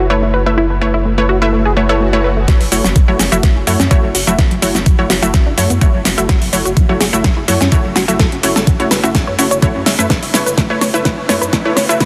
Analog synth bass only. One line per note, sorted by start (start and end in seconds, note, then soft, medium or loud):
0.00 2.46 F#1 medium
2.61 2.68 F#1 medium
2.72 2.81 F#1 loud
2.84 2.92 F#1 medium
3.08 3.16 F#1 medium
3.19 3.28 F#1 medium
3.32 3.40 F#1 medium
3.56 3.64 F#1 medium
3.67 3.76 F#2 loud
3.80 3.87 F#2 medium
4.03 4.11 F#1 medium
4.15 4.23 F#1 medium
4.27 4.35 F#1 medium
4.51 4.59 F#1 medium
4.62 4.71 F#1 loud
4.75 4.83 F#1 medium
4.99 5.07 F#1 medium
5.10 5.19 F#1 medium
5.23 5.30 F#1 medium
5.46 5.54 F#1 medium
5.58 5.66 F#2 loud
5.70 5.78 F#2 medium
5.94 6.02 F#1 medium
6.05 6.14 F#1 loud
6.18 6.26 F#1 medium
6.42 6.49 F#1 medium
6.53 6.62 F#1 medium
6.65 6.73 F#1 medium
6.89 6.97 F#1 medium
7.00 7.09 F#1 medium
7.13 7.21 F#1 medium
7.37 7.45 F#1 medium
7.48 7.57 F#2 loud
7.61 7.68 F#2 medium
7.84 7.92 F#1 medium
7.96 8.04 F#1 loud
8.08 8.16 F#1 medium
8.32 8.40 F#1 medium
8.43 8.52 F#1 loud
8.56 8.64 F#1 medium
8.80 8.88 F#1 medium
8.91 9.00 F#1 medium
9.04 9.11 F#1 medium
9.27 9.35 F#2 medium
9.38 9.47 F#1 loud
9.51 9.59 F#1 medium
9.75 9.83 F#2 medium
9.86 9.95 F#1 medium
9.99 10.07 F#2 medium
10.23 10.30 F#1 medium
10.34 10.43 F#1 loud
10.46 10.54 F#1 medium
10.70 10.78 F#1 medium
10.81 10.90 F#1 medium
10.94 11.02 F#1 medium
11.18 11.26 F#1 medium
11.29 11.38 F#2 loud
11.42 11.49 F#2 loud
11.65 11.73 F#1 medium
11.77 11.85 F#1 loud
11.89 11.97 F#1 medium